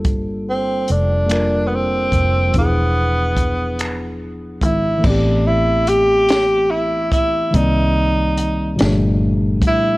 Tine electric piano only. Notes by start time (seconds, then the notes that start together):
Already playing: G3 A#3 D4 F4 A4
1.26 G3 A#3 D4
1.31 F4 A#4
2.49 F3 B3
2.55 D4 E4
2.61 G#4
4.98 E3 A3
5.03 B3 C4
5.10 G4
7.51 D#3 G3 A#3
7.55 C4 D5
8.76 A#2 F3 G3
8.80 A3 D4